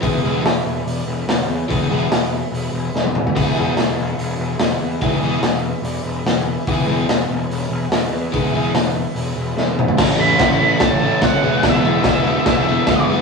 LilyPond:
<<
  \new Staff \with { instrumentName = "Lead electric guitar" } { \time 4/4 \key e \major \tempo 4 = 145 r1 | r1 | r1 | r1 |
r1 | r1 | r8 b''4. a''4 fis''4 | e''4 e''4 e''4. r8 | }
  \new Staff \with { instrumentName = "Transistor combo organ" } { \time 4/4 \key e \major <gis' b' e''>8 <gis' b' e''>8 <gis' b' e''>8 <gis' b' e''>8 <gis' b' d''>8 <gis' b' e''>8 <gis' b' cis''>8 <gis' b' cis''>8 | <gis' b' e''>8 <gis' b' fis''>8 <gis' b' fis''>8 <gis' b' e''>8 <gis' b' e''>8 <gis' b' e''>8 <gis' b' e''>8 <gis' b' e''>8 | <gis' b' e''>8 <gis' b' fis''>8 <gis' b' e''>8 <gis' b' e''>8 <gis' b' e''>8 <gis' b' e''>8 <gis' b' e''>8 <gis' b' e''>8 | <gis' b' e''>8 <gis' b' e''>8 <gis' b' e''>8 <gis' b' e''>8 <gis' b' d''>8 <gis' b' e''>8 <gis' b' e''>8 <gis' b' e''>8 |
<gis' b' e''>8 <gis' b' e''>8 <gis' b' e''>8 <gis' b' e''>8 <gis' b' cis''>8 <gis' b' e''>8 <gis' b' fis''>8 <gis' b' e''>8 | <gis' b' fis''>8 <gis' b' e''>8 <gis' b' cis''>8 <gis' b' e''>8 <gis' b' e''>8 <gis' b' e''>8 <gis' b' e''>8 <gis' b' e''>8 | <a' cis'' e''>8 <a' cis'' e''>8 <a' cis'' e''>8 <a' cis'' e''>8 <a' cis'' e''>8 <a' cis'' e''>8 <a' cis'' e''>8 <gis' b' e''>8~ | <gis' b' e''>8 <gis' b' fis''>8 <gis' b' e''>8 <gis' b' e''>8 <gis' b' e''>8 <gis' b' e''>8 <gis' b' e''>8 <gis' b' e''>8 | }
  \new Staff \with { instrumentName = "Overdriven electric guitar" } { \time 4/4 \key e \major <e gis b e' gis'>8 <e gis b e' gis'>8 r2. | <e gis b e' gis'>8 <e gis b e' gis'>8 r2. | <e gis b e' gis'>8 <e gis b e' gis'>8 r2. | <e gis b e' gis'>8 <e gis b e' gis'>8 r2. |
<e gis b e' gis'>8 <e gis b e' gis'>8 r2. | <e gis b e' gis'>8 <e gis b e' gis'>8 r2. | <a, e a cis' e'>8 <a, e a cis' e'>8 <a, e a cis' e'>8 <a, e a cis' e'>8 <a, e a cis' e'>8 <a, e a cis' e'>8 <a, e a cis' e'>8 <e gis b e'>8 | <e gis b e'>8 <e gis b e'>8 <e gis b e'>8 <e gis b e'>8 <e gis b e'>8 <e gis b e'>8 <e gis b e'>8 <e gis b e'>8 | }
  \new Staff \with { instrumentName = "Picked electric bass" } { \clef bass \time 4/4 \key e \major e,,8 e,,8 e,,8 e,,8 e,,8 e,,8 e,,8 e,8 | e,,8 e,,8 e,,4 e,,8 e,,8 e,,4 | e,,8 e,,8 e,,8 e,,8 e,,8 e,,8 e,,8 e,8 | e,,8 e,,8 e,,4 e,,8 e,,8 e,,4 |
e,,8 e,,8 e,,8 e,,8 e,,8 e,,8 e,,8 e,8 | e,,8 e,,8 e,,4 e,,8 e,,8 e,,4 | a,,8 a,,8 a,,4 a,,4 fis,,8 e,,8 | e,,8 e,,8 e,,4 e,,4 d,8 fis,,8 | }
  \new DrumStaff \with { instrumentName = "Drums" } \drummode { \time 4/4 <hho bd>4 <hho sn>4 hho4 <hho sn>4 | <hho bd>4 <hho sn>4 hho4 sn16 tommh16 toml16 tomfh16 | <cymc hho bd>4 <hho sn>4 hho4 <hho sn>4 | <hho bd>4 <hho sn>4 hho4 <hho sn>4 |
<hho bd>4 <hho sn>4 hho4 <hho sn>4 | <hho bd>4 <hho sn>4 hho4 sn8 toml16 tomfh16 | <cymc bd sn>4 <cymc bd sn>4 <cymc bd sn>4 <cymc bd sn>4 | <cymc bd sn>4 <cymc bd sn>4 <cymc bd sn>4 <cymc bd sn>4 | }
>>